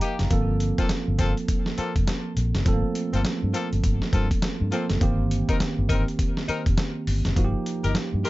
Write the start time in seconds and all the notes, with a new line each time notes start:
Already playing: F3 A#3 D#4 G4 D#5 F5 G5 A#5
0.01 A#3 D#4 G4, closed hi-hat
0.19 F#1, snare, closed hi-hat
0.30 G1 F3 A#3 C4 A4, kick, closed hi-hat
0.60 closed hi-hat
0.78 A#3 C4 F4 A4, kick, closed hi-hat
0.89 muted fingered electric bass stroke, snare, closed hi-hat
1.08 G1
1.19 A#3 C4 F4 A4, kick, closed hi-hat
1.37 closed hi-hat
1.48 kick, closed hi-hat
1.66 snare
1.78 A#3 C4 F4 A4, muted fingered electric bass stroke, closed hi-hat
1.96 F1, kick, closed hi-hat
2.07 snare, closed hi-hat
2.37 A#1, closed hi-hat
2.55 F#1, snare, closed hi-hat
2.66 G1 F3 A3 C4 A4, kick, closed hi-hat
2.73 A#3
2.95 closed hi-hat
3.13 G1 A#3 C4 F4 A4, closed hi-hat
3.25 muted fingered electric bass stroke, snare, closed hi-hat
3.43 G2
3.54 A#3 C4 F4 A4, closed hi-hat
3.73 G1, closed hi-hat
3.84 G1, kick, closed hi-hat
4.02 snare
4.13 G2 A#3 C4 F4 A4, kick, closed hi-hat
4.31 kick, closed hi-hat
4.42 snare, closed hi-hat
4.61 G2
4.72 F3 A#3 C4 F4 A4, closed hi-hat
4.90 F#1, snare, closed hi-hat
5.01 G1 D#3 A#3 C4 G4, kick, closed hi-hat
5.31 closed hi-hat
5.48 C4 D#4 A#4, kick, closed hi-hat
5.60 muted fingered electric bass stroke, snare, closed hi-hat
5.79 G1
5.89 C4 D#4 A#4, kick, closed hi-hat
6.08 closed hi-hat
6.19 kick, closed hi-hat
6.37 snare
6.48 C4 D#4 A#4, muted fingered electric bass stroke, closed hi-hat
6.66 F1, kick, closed hi-hat
6.77 snare, closed hi-hat
7.07 G1, open hi-hat
7.25 F#1, snare, closed hi-hat
7.36 G1 F3 A#3 D#4 F#4, kick, closed hi-hat
7.45 G4
7.66 closed hi-hat
7.84 G1 D#4 G4 A#4, closed hi-hat
7.95 muted fingered electric bass stroke, snare, closed hi-hat
8.14 G2
8.24 D#4 G4 A#4 C6, open hi-hat